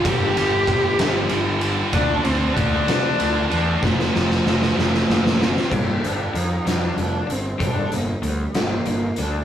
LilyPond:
<<
  \new Staff \with { instrumentName = "Cello" } { \time 6/8 \key g \minor \tempo 4. = 64 g'2~ g'8 r8 | d'8 c'8 d'4. d'8 | a4. a4 c'8 | bes8 d'8 ees'8 d'8 d'8 c'8 |
d'8 bes8 g8 bes4 d'8 | }
  \new Staff \with { instrumentName = "Clean electric guitar" } { \clef bass \time 6/8 \key g \minor r2. | r2. | r2. | <g, d g>8 <g, d>8 <g, d>8 <g, d>8 <g, d>8 <g, d>8 |
<g, d g>8 <g, d>8 <g, d>8 <g, d>8 <g, d>8 <g, d>8 | }
  \new Staff \with { instrumentName = "Distorted electric guitar" } { \clef bass \time 6/8 \key g \minor <g, d g>8 <g, d g>8 <g, d g>8 <g, d g>8 <g, d g>8 <g, d g>8 | <d a d'>8 <d a d'>8 <d a d'>8 <d a d'>8 <d a d'>8 <d a d'>8 | <f, c f>8 <f, c f>8 <f, c f>8 <f, c f>8 <f, c f>8 <f, c f>8 | r2. |
r2. | }
  \new Staff \with { instrumentName = "Distorted electric guitar" } { \clef bass \time 6/8 \key g \minor <g, d g>8 <g, d g>8 <g, d g>8 <g, d g>8 <g, d g>8 <g, d g>8 | <d a d'>8 <d a d'>8 <d a d'>8 <d a d'>8 <d a d'>8 <d a d'>8 | <f, c f>8 <f, c f>8 <f, c f>8 <f, c f>8 <f, c f>8 <f, c f>8 | r2. |
r2. | }
  \new Staff \with { instrumentName = "Picked electric bass" } { \clef bass \time 6/8 \key g \minor g,,8 g,,8 g,,8 g,,8 g,,4 | d,8 d,8 d,8 c8 d,8 e,8 | f,,8 f,,8 f,,8 f,,8 fis,,4 | g,,8 g,,8 f,8 f,8 f,,8 g,,8 |
g,,8 g,,8 d,8 g,,8 g,,8 d,8 | }
  \new DrumStaff \with { instrumentName = "Drums" } \drummode { \time 6/8 <bd cymr>8 cymr8 <bd cymr>8 <cymr sn>8 cymr8 cymr8 | <bd cymr>8 cymr8 <bd cymr>8 <cymr sn>8 cymr8 cymr8 | <bd sn>16 sn16 sn16 sn16 sn16 sn16 sn16 sn16 sn16 sn16 sn16 sn16 | <cymc bd>8 hh8 hh8 <hh sn>8 hh8 hh8 |
<hh bd>8 hh8 hh8 <hh sn>8 hh8 hh8 | }
>>